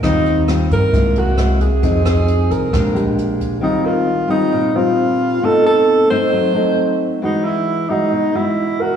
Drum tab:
HH |xxxxxxxx|xxxxxxxx|--------|--------|
SD |r-r---r-|-r--r---|--------|--------|
BD |o--oo--o|o--oo--o|--------|--------|

HH |--------|
SD |--------|
BD |--------|